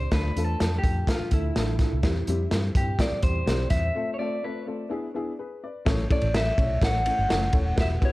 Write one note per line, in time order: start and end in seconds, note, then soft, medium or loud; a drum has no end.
0.00 0.11 C5 loud
0.11 0.30 D2 loud
0.11 0.28 A3 medium
0.11 0.28 D4 medium
0.11 0.29 F4 medium
0.11 0.29 A4 loud
0.11 0.42 B4 loud
0.11 kick loud
0.11 snare loud
0.11 closed hi-hat medium
0.36 0.54 E2 medium
0.36 0.52 A3 medium
0.36 0.53 D4 medium
0.36 0.53 F4 medium
0.36 0.53 A4 medium
0.36 closed hi-hat medium
0.45 0.77 A4 medium
0.60 0.79 F2 medium
0.60 0.76 A3 medium
0.60 0.77 D4 medium
0.60 0.77 F4 medium
0.60 0.77 A4 medium
0.60 snare loud
0.60 closed hi-hat medium
0.78 1.07 G4 loud
0.83 1.02 F2 medium
0.83 1.00 A3 medium
0.83 1.00 D4 medium
0.83 1.00 F4 medium
0.83 1.00 A4 medium
0.83 kick medium
0.83 closed hi-hat medium
1.07 1.24 A3 medium
1.07 1.24 D4 medium
1.07 1.24 F4 medium
1.07 1.33 F4 medium
1.07 1.25 A4 medium
1.07 kick medium
1.07 snare loud
1.07 closed hi-hat medium
1.20 muted fingered electric bass stroke soft
1.31 1.50 D2 loud
1.31 1.48 A3 medium
1.31 1.49 D4 medium
1.31 2.48 E4 medium
1.31 1.49 F4 medium
1.31 1.49 A4 medium
1.31 kick medium
1.31 closed hi-hat medium
1.56 1.83 A1 medium
1.56 1.72 A3 medium
1.56 1.73 D4 medium
1.56 1.73 F4 medium
1.56 1.73 A4 loud
1.56 snare loud
1.56 closed hi-hat medium
1.79 1.96 A3 medium
1.79 1.97 D4 medium
1.79 1.97 F4 medium
1.79 1.97 A4 medium
1.79 kick medium
1.79 snare soft
1.79 closed hi-hat medium
1.93 2.01 C2 medium
2.03 2.22 E2 loud
2.03 2.20 G3 loud
2.03 2.20 C4 medium
2.03 2.20 E4 loud
2.03 2.21 G4 loud
2.03 kick loud
2.03 snare loud
2.03 closed hi-hat medium
2.27 2.46 F2 medium
2.27 2.44 G3 loud
2.27 2.44 C4 medium
2.27 2.44 E4 loud
2.27 2.45 G4 loud
2.27 closed hi-hat medium
2.51 2.70 G2 medium
2.51 2.67 G3 medium
2.51 2.68 C4 medium
2.51 2.68 E4 medium
2.51 2.68 G4 medium
2.51 snare loud
2.51 closed hi-hat medium
2.75 2.93 G2 medium
2.75 2.92 G3 medium
2.75 2.92 C4 medium
2.75 2.92 E4 medium
2.75 2.92 G4 medium
2.75 2.98 G4 medium
2.75 kick medium
2.75 closed hi-hat medium
2.98 3.15 G3 medium
2.98 3.15 C4 medium
2.98 3.16 E4 medium
2.98 3.16 G4 medium
2.98 3.23 D5 medium
2.98 kick medium
2.98 snare loud
2.98 closed hi-hat medium
3.11 muted fingered electric bass stroke soft
3.22 3.42 E2 medium
3.22 3.39 G3 medium
3.22 3.39 C4 medium
3.22 3.40 E4 medium
3.22 3.40 G4 medium
3.22 3.70 C5 loud
3.22 kick medium
3.22 closed hi-hat medium
3.46 3.65 B1 medium
3.46 3.63 G3 loud
3.46 3.63 C4 medium
3.46 3.64 E4 loud
3.46 3.64 G4 loud
3.46 snare loud
3.46 closed hi-hat medium
3.70 3.89 E2 loud
3.70 3.87 G3 medium
3.70 3.87 C4 medium
3.70 3.87 E4 medium
3.70 3.88 G4 medium
3.70 4.10 E5 loud
3.70 kick medium
3.70 snare soft
3.70 closed hi-hat medium
3.94 4.11 A3 medium
3.94 4.11 C4 medium
3.94 4.12 F4 medium
3.94 4.12 A4 loud
4.14 4.19 C#5 medium
4.18 4.35 A3 medium
4.18 4.35 C4 medium
4.18 4.36 F4 medium
4.18 4.36 A4 loud
4.18 4.44 D5 medium
4.43 4.59 A3 medium
4.43 4.60 C4 medium
4.43 4.60 F4 medium
4.43 4.60 A4 medium
4.43 4.66 B4 medium
4.66 4.83 A3 medium
4.66 4.83 C4 medium
4.66 4.83 F4 medium
4.66 4.84 A4 medium
4.89 5.06 B3 medium
4.89 5.07 D4 medium
4.89 5.07 E4 medium
4.89 5.07 G#4 loud
5.14 5.31 B3 medium
5.14 5.31 D4 medium
5.14 5.31 E4 medium
5.14 5.32 G#4 loud
5.39 5.62 G#4 medium
5.39 5.61 B4 medium
5.64 6.09 B4 medium
5.64 6.09 D5 medium
5.85 6.05 A1 loud
5.85 6.02 A3 loud
5.85 6.02 C#4 loud
5.85 6.03 E4 loud
5.85 6.03 A4 loud
5.85 6.03 C#5 loud
5.85 kick loud
5.85 snare loud
5.85 ride medium
6.09 6.26 A3 medium
6.09 6.26 C#4 medium
6.09 6.27 E4 medium
6.09 6.27 A4 medium
6.09 6.27 C#5 loud
6.09 6.36 D5 medium
6.09 kick loud
6.09 ride medium
6.21 6.50 A1 medium
6.21 ride soft
6.34 6.50 A3 medium
6.34 6.50 C#4 medium
6.34 6.51 E4 medium
6.34 6.51 A4 medium
6.34 6.51 E5 medium
6.34 6.84 E5 medium
6.34 snare loud
6.34 ride medium
6.57 6.76 B1 medium
6.57 6.74 A3 medium
6.57 6.74 C#4 medium
6.57 6.74 E4 medium
6.57 6.75 A4 medium
6.57 6.75 C#5 medium
6.57 kick medium
6.57 ride medium
6.81 7.09 A1 medium
6.81 6.98 A3 medium
6.81 6.98 C#4 medium
6.81 6.99 E4 medium
6.81 6.99 A4 medium
6.81 6.99 C#5 medium
6.81 7.80 F#5 loud
6.81 kick medium
6.81 snare loud
6.81 ride medium
7.05 7.22 A3 medium
7.05 7.22 C#4 medium
7.05 7.22 E4 medium
7.05 7.23 A4 medium
7.05 7.23 C#5 medium
7.05 ride medium
7.19 7.28 G1 medium
7.28 7.48 F#1 medium
7.28 7.46 A3 loud
7.28 7.46 C#4 loud
7.28 7.46 E4 medium
7.28 7.46 A4 medium
7.28 7.47 C#5 loud
7.28 snare loud
7.28 ride medium
7.52 7.72 D#1 medium
7.52 7.69 A3 medium
7.52 7.70 C#4 medium
7.52 7.70 E4 medium
7.52 7.70 A4 medium
7.52 7.70 C#5 loud
7.52 kick medium
7.52 ride medium
7.76 7.96 E1 loud
7.76 7.93 B3 medium
7.76 7.94 E4 medium
7.76 7.94 F#4 medium
7.76 7.94 G4 medium
7.76 7.94 B4 loud
7.76 kick loud
7.76 snare loud
7.76 ride medium
7.81 7.87 E5 loud
8.01 8.12 B3 medium
8.01 8.12 E4 medium
8.01 8.12 F#4 loud
8.01 8.12 G4 medium
8.01 8.12 B4 loud
8.01 kick medium
8.01 ride medium
8.05 8.12 C#5 medium